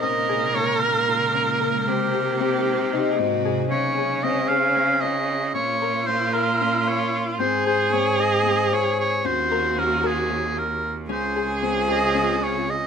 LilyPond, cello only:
\new Staff \with { instrumentName = "Cello" } { \clef bass \time 7/8 \key bes \dorian \tempo 4 = 114 bes,2.~ bes,8 | c2~ c8 aes,4 | \key des \major des2.~ des8 | bes,2.~ bes,8 |
aes,2.~ aes,8 | ees,2.~ ees,8 | des,2.~ des,8 | }